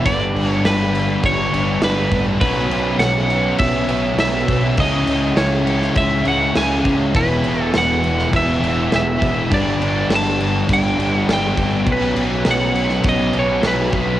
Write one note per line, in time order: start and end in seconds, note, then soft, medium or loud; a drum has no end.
0.05 0.31 G1 loud
0.05 0.33 G2 loud
0.05 0.34 D3 medium
0.05 0.34 G3 loud
0.05 1.52 B3 loud
0.05 1.52 D4 loud
0.05 0.49 D5 medium
0.05 kick loud
0.05 crash medium
0.34 0.61 G1 medium
0.34 0.63 G2 medium
0.34 0.63 D3 medium
0.34 0.64 G3 loud
0.34 crash medium
0.49 0.66 C#5 medium
0.64 1.16 G1 medium
0.64 0.92 G2 medium
0.64 0.92 D3 medium
0.64 0.92 G3 medium
0.64 1.26 B4 medium
0.64 snare loud
0.64 crash medium
0.93 1.21 G2 medium
0.93 1.21 D3 medium
0.93 1.22 G3 loud
0.93 crash medium
1.22 1.49 G1 medium
1.22 1.51 G2 loud
1.22 1.52 D3 medium
1.22 1.52 G3 loud
1.22 kick loud
1.22 crash medium
1.26 1.84 C#5 loud
1.52 1.79 G1 medium
1.52 1.81 G2 medium
1.52 1.81 D3 medium
1.52 1.82 G3 medium
1.52 1.81 B3 medium
1.52 1.81 D4 medium
1.52 crash medium
1.81 2.07 G1 medium
1.81 2.11 G2 medium
1.81 2.10 D3 medium
1.81 2.11 G3 medium
1.81 2.40 B3 medium
1.81 2.40 D4 medium
1.81 2.25 B4 medium
1.81 snare loud
1.81 crash medium
2.12 2.38 A1 medium
2.12 2.40 G2 medium
2.12 2.40 D3 medium
2.12 2.40 G3 loud
2.12 kick loud
2.12 crash medium
2.41 2.67 B1 loud
2.41 2.70 B2 loud
2.41 2.71 F#3 loud
2.41 2.71 B3 loud
2.41 3.87 C#4 loud
2.41 2.99 B4 medium
2.41 kick loud
2.41 crash medium
2.70 2.96 B1 medium
2.70 2.99 B2 medium
2.70 3.00 F#3 loud
2.70 3.00 B3 medium
2.70 crash medium
2.98 3.51 B1 loud
2.98 3.28 B2 medium
2.98 3.29 F#3 medium
2.98 3.30 B3 loud
2.98 3.59 F#5 loud
2.98 snare loud
2.98 crash medium
3.30 3.58 B2 medium
3.30 3.59 F#3 loud
3.30 3.60 B3 loud
3.30 crash medium
3.58 3.85 B1 medium
3.58 3.87 B2 medium
3.58 3.88 F#3 medium
3.58 3.88 B3 loud
3.58 4.19 E5 loud
3.58 kick loud
3.58 crash medium
3.88 4.14 B1 medium
3.88 4.18 B2 medium
3.88 4.18 F#3 medium
3.88 4.18 B3 loud
3.88 4.17 C#4 medium
3.88 crash medium
4.16 4.43 B1 medium
4.16 4.48 B2 medium
4.16 4.48 F#3 medium
4.16 4.49 B3 medium
4.16 4.77 C#4 medium
4.16 4.80 E5 medium
4.16 snare loud
4.16 crash medium
4.48 4.74 B1 loud
4.48 4.76 B2 medium
4.48 4.77 F#3 medium
4.48 4.77 B3 medium
4.48 kick medium
4.48 crash medium
4.77 5.03 C#2 loud
4.77 5.05 C#3 medium
4.77 5.06 G#3 medium
4.77 5.06 C#4 loud
4.77 6.22 E4 loud
4.77 5.40 D#5 loud
4.77 kick loud
4.77 crash medium
5.06 5.33 C#2 medium
5.06 5.34 C#3 medium
5.06 5.35 G#3 medium
5.06 5.35 C#4 medium
5.06 crash medium
5.36 5.88 C#2 medium
5.36 5.64 C#3 medium
5.36 5.65 G#3 medium
5.36 5.65 C#4 loud
5.36 5.98 C#5 medium
5.36 snare loud
5.36 crash medium
5.65 5.94 C#3 medium
5.65 5.95 G#3 medium
5.65 5.95 C#4 medium
5.65 crash medium
5.82 snare soft
5.95 6.22 C#2 medium
5.95 6.23 C#3 loud
5.95 6.24 G#3 medium
5.95 6.25 C#4 loud
5.95 6.27 E5 loud
5.95 kick loud
5.95 crash medium
6.24 6.52 C#2 medium
6.24 6.54 C#3 medium
6.24 6.54 G#3 medium
6.24 6.55 C#4 medium
6.24 6.52 E4 medium
6.24 crash medium
6.28 6.57 F#5 medium
6.55 6.81 C#2 medium
6.55 6.84 C#3 medium
6.55 6.84 G#3 medium
6.55 6.84 C#4 medium
6.55 7.13 E4 medium
6.55 6.97 G#5 medium
6.55 snare loud
6.55 crash medium
6.85 7.17 C#2 loud
6.85 7.12 C#3 medium
6.85 7.13 G#3 medium
6.85 7.13 C#4 medium
6.85 kick medium
6.85 crash medium
7.14 7.40 E1 loud
7.14 7.44 E2 medium
7.14 7.44 B2 medium
7.14 7.45 E3 loud
7.14 8.60 G#3 medium
7.14 8.62 B3 loud
7.14 8.59 E4 loud
7.14 7.62 B4 medium
7.14 kick loud
7.14 crash medium
7.44 7.70 E1 medium
7.44 7.73 E2 medium
7.44 7.73 B2 loud
7.44 7.73 E3 medium
7.44 crash medium
7.62 7.76 A4 medium
7.74 8.25 E1 medium
7.74 8.03 E2 medium
7.74 8.03 B2 medium
7.74 8.04 E3 medium
7.74 snare loud
7.74 crash medium
7.78 8.36 F#5 loud
8.03 8.32 E2 loud
8.03 8.33 B2 medium
8.03 8.34 E3 loud
8.03 crash medium
8.18 snare soft
8.33 8.58 E1 loud
8.33 8.61 E2 medium
8.33 8.62 B2 loud
8.33 8.62 E3 loud
8.33 8.95 E5 loud
8.33 kick loud
8.33 crash medium
8.60 8.88 E1 medium
8.60 8.92 E2 loud
8.60 8.92 B2 medium
8.60 8.92 E3 medium
8.60 8.90 G#3 medium
8.60 8.91 B3 medium
8.60 8.89 E4 medium
8.60 crash medium
8.91 9.18 E1 medium
8.91 9.21 E2 medium
8.91 9.21 B2 medium
8.91 9.21 E3 medium
8.91 9.49 G#3 medium
8.91 9.51 B3 medium
8.91 9.49 E4 medium
8.91 snare loud
8.91 crash medium
8.96 9.55 E5 medium
9.22 9.47 E1 loud
9.22 9.49 E2 medium
9.22 9.50 B2 medium
9.22 9.50 E3 loud
9.22 kick medium
9.22 crash medium
9.51 9.77 G1 loud
9.51 9.79 G2 medium
9.51 9.80 D3 loud
9.51 9.80 G3 loud
9.51 10.97 B3 loud
9.51 10.97 D4 loud
9.51 10.13 D5 loud
9.51 kick loud
9.51 crash medium
9.80 10.06 G1 loud
9.80 10.09 G2 medium
9.80 10.09 D3 loud
9.80 10.10 G3 medium
9.80 crash medium
10.09 10.61 G1 medium
10.09 10.39 G2 medium
10.09 10.40 D3 medium
10.09 10.40 G3 loud
10.09 snare loud
10.09 crash loud
10.16 10.73 A5 loud
10.40 10.67 G2 medium
10.40 10.67 D3 loud
10.40 10.68 G3 loud
10.40 crash medium
10.68 10.95 G1 loud
10.68 10.96 G2 medium
10.68 10.97 D3 loud
10.68 10.97 G3 loud
10.68 kick loud
10.68 crash medium
10.73 11.15 G5 loud
10.97 11.23 G1 loud
10.97 11.26 G2 medium
10.97 11.27 D3 medium
10.97 11.27 G3 loud
10.97 11.27 B3 medium
10.97 11.26 D4 medium
10.97 crash medium
11.15 11.32 F#5 loud
11.27 11.53 G1 loud
11.27 11.55 G2 medium
11.27 11.56 D3 medium
11.27 11.56 G3 loud
11.27 11.86 B3 medium
11.27 11.86 D4 loud
11.27 snare loud
11.27 crash medium
11.33 11.91 G5 loud
11.56 11.83 G1 loud
11.56 11.85 G2 medium
11.56 11.85 D3 medium
11.56 11.85 G3 medium
11.56 kick medium
11.56 crash medium
11.85 12.13 B1 loud
11.85 12.14 B2 medium
11.85 12.14 F#3 loud
11.85 12.15 B3 loud
11.85 kick loud
11.85 crash medium
11.90 13.32 C#4 medium
11.90 12.51 B4 loud
12.15 12.42 B1 loud
12.15 12.43 B2 medium
12.15 12.44 F#3 medium
12.15 12.44 B3 loud
12.15 crash medium
12.44 12.98 B1 medium
12.44 12.73 B2 loud
12.44 12.74 F#3 medium
12.44 12.74 B3 loud
12.44 snare loud
12.44 crash medium
12.51 13.09 F#5 loud
12.74 13.02 B2 medium
12.74 13.02 F#3 loud
12.74 13.03 B3 medium
12.74 crash medium
12.89 snare soft
13.03 13.31 B1 medium
13.03 13.31 B2 loud
13.03 13.31 F#3 loud
13.03 13.32 B3 loud
13.03 kick loud
13.03 crash medium
13.09 13.38 D#5 loud
13.32 13.61 B1 medium
13.32 13.60 B2 medium
13.32 13.61 F#3 loud
13.32 13.61 B3 loud
13.32 13.62 C#4 medium
13.32 crash medium
13.39 13.67 C#5 medium
13.61 13.90 B1 medium
13.61 13.90 B2 medium
13.61 13.91 F#3 medium
13.61 13.91 B3 medium
13.61 14.20 C#4 medium
13.61 snare loud
13.61 crash medium
13.68 14.20 B4 medium
13.92 14.20 B1 medium
13.92 14.20 B2 medium
13.92 14.20 F#3 medium
13.92 14.20 B3 medium
13.92 kick medium
13.92 crash medium